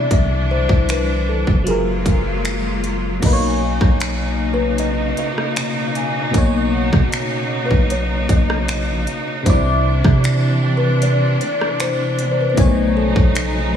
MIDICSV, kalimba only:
0, 0, Header, 1, 2, 480
1, 0, Start_track
1, 0, Tempo, 779221
1, 67, Time_signature, 4, 2, 24, 8
1, 8479, End_track
2, 0, Start_track
2, 0, Title_t, "Kalimba"
2, 0, Program_c, 0, 108
2, 0, Note_on_c, 0, 74, 90
2, 76, Note_off_c, 0, 74, 0
2, 76, Note_on_c, 0, 76, 98
2, 220, Note_off_c, 0, 76, 0
2, 315, Note_on_c, 0, 72, 80
2, 555, Note_on_c, 0, 71, 78
2, 558, Note_off_c, 0, 72, 0
2, 795, Note_on_c, 0, 69, 81
2, 798, Note_off_c, 0, 71, 0
2, 1014, Note_off_c, 0, 69, 0
2, 1035, Note_on_c, 0, 70, 75
2, 1726, Note_off_c, 0, 70, 0
2, 2794, Note_on_c, 0, 71, 86
2, 2955, Note_off_c, 0, 71, 0
2, 2955, Note_on_c, 0, 75, 100
2, 3187, Note_off_c, 0, 75, 0
2, 3195, Note_on_c, 0, 75, 99
2, 3646, Note_off_c, 0, 75, 0
2, 4716, Note_on_c, 0, 71, 80
2, 4875, Note_on_c, 0, 73, 94
2, 4876, Note_off_c, 0, 71, 0
2, 5113, Note_on_c, 0, 75, 104
2, 5118, Note_off_c, 0, 73, 0
2, 5565, Note_off_c, 0, 75, 0
2, 6636, Note_on_c, 0, 71, 84
2, 6795, Note_on_c, 0, 74, 92
2, 6796, Note_off_c, 0, 71, 0
2, 7028, Note_off_c, 0, 74, 0
2, 7035, Note_on_c, 0, 74, 93
2, 7141, Note_off_c, 0, 74, 0
2, 7275, Note_on_c, 0, 72, 87
2, 7531, Note_on_c, 0, 74, 81
2, 7534, Note_off_c, 0, 72, 0
2, 7583, Note_off_c, 0, 74, 0
2, 7585, Note_on_c, 0, 72, 79
2, 7638, Note_off_c, 0, 72, 0
2, 7643, Note_on_c, 0, 71, 73
2, 7695, Note_off_c, 0, 71, 0
2, 7699, Note_on_c, 0, 72, 75
2, 7751, Note_off_c, 0, 72, 0
2, 7751, Note_on_c, 0, 73, 102
2, 7989, Note_on_c, 0, 69, 97
2, 7996, Note_off_c, 0, 73, 0
2, 8479, Note_off_c, 0, 69, 0
2, 8479, End_track
0, 0, End_of_file